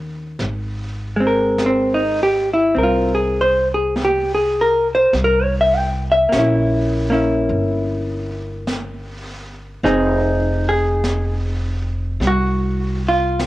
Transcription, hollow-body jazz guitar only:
Already playing: D#3 A#3 C#4 G4
1.16 G#3
1.20 C4
1.27 A#4
1.66 C4
1.94 D#4
2.23 G4
2.54 E4
2.75 C4 A#4
2.83 F4
3.15 G#4
3.41 C5
3.74 G#4
4.04 G4
4.34 G#4
4.61 A#4
4.95 C5
5.24 A#4
5.43 C#5
5.61 E5
5.77 G5
6.12 E5
6.29 A#3
6.34 C#4
6.39 E4
7.10 A#3 C#4 E4
9.84 C4 D#4 G#4
10.69 G#4
12.27 F#4
13.08 F4

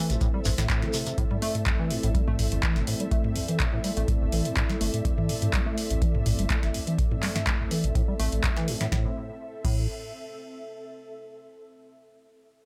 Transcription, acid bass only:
Already playing: E3
0.10 A2
0.21 A2
0.34 G3
0.45 G2
0.58 A2
0.70 A2
0.82 E3
0.94 C3
1.07 C3
1.18 A2
1.31 G3
1.42 A3
1.66 A1
1.79 E3
1.90 A2
2.03 A2
2.15 G3
2.28 A3
2.52 A1
2.63 E3
2.76 A2
2.87 A2
3.00 G3
3.11 A3
3.36 A1
3.49 E3
3.60 A2
3.73 A2
3.84 G3
3.97 A3
4.21 A1
4.32 E3
4.45 A2
4.57 A2
4.69 G3
4.81 A3
5.05 A1
5.18 E3
5.29 A2
5.42 A2
5.53 G3
5.66 A3
5.90 A1
6.02 E3
6.15 A2
6.26 A2
6.39 G3
6.50 A3
6.74 A1
6.87 E3
6.99 A2
7.11 A2
7.23 G3
7.36 A3
7.60 A1
7.71 E3
7.84 A2
7.95 A2
8.08 G3
8.19 A3
8.44 A1
8.57 E3
8.68 A2
8.81 A2
8.92 A2
9.65 A2

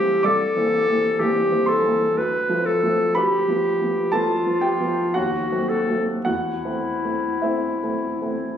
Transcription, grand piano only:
Already playing: E3 G3 C4 E5 F5 E6 F6
0.23 C2 D5 D6
0.56 E3 A#3 C4
0.88 E3 A#3 C4
1.19 E3 A#3 C4
1.51 E3 A#3 C4
1.66 C5 C6
1.84 E3 A#3 C4
2.17 D2
2.49 F3 A3 C4
2.83 F3 A3 C4
3.15 D2 B4 B5
3.48 F3 B3
3.81 F3 B3
4.12 F3 B3 A4 A5
4.46 F3 B3
4.61 G4 G5
4.80 F3 B3
5.14 D#2 F#4 F#5
5.51 F#3 A3 C4
5.88 F#3 A3 C4
6.25 E2 F#4 F#5
6.65 A3 C4
7.04 A3 C4
7.42 A3 C4 E4 E5
7.83 A3 C4
8.22 A3 C4

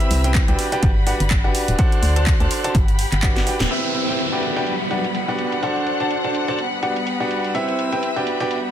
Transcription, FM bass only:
0.11 C2
0.48 C2
0.83 G1
1.20 G1
1.68 D1
2.03 D2
2.40 D2
2.75 G1
3.12 G1
3.60 D1

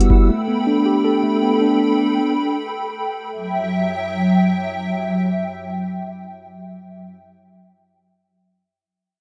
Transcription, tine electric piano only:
Already playing: G3 B3 E4 F#4 G4
0.10 E4
0.29 A3
0.48 B3
0.67 D4
0.86 G4
1.05 A4
1.23 A3
1.42 B3
1.61 D4

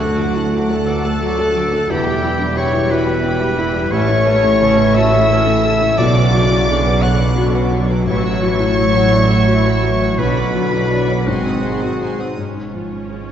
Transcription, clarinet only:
Already playing: F#4
0.87 A4
1.90 G4
2.57 C#5
2.91 B4
3.92 C#5
4.94 E5
5.98 D5
7.02 F#5
8.08 C#5
10.19 B4
11.27 F#4

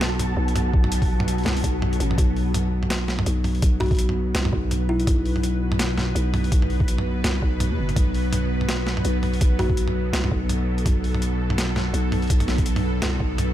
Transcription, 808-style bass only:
Already playing: B1
0.37 B1
0.74 B1
1.45 C2
1.64 B1
2.00 A1
2.18 B1
3.26 B1
3.62 B1
4.35 C2
4.53 B1
5.07 B1
6.15 B1
6.52 B1
7.24 C2
7.42 B1
7.71 E2
7.78 F#1
7.96 B1
9.05 B1
9.41 B1
10.13 C2
10.31 B1
10.86 B1
11.94 B1
12.30 B1
13.02 C2
13.20 B1

